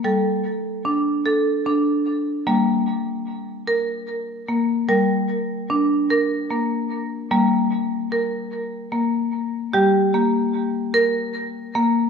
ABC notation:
X:1
M:6/8
L:1/8
Q:3/8=50
K:none
V:1 name="Marimba"
A2 D A D2 | _B,2 z _B2 B, | _B2 D B _B,2 | _B,2 _B2 B,2 |
G _B,2 _B2 B, |]
V:2 name="Marimba" clef=bass
G,6 | G,6 | G,6 | G,6 |
G,6 |]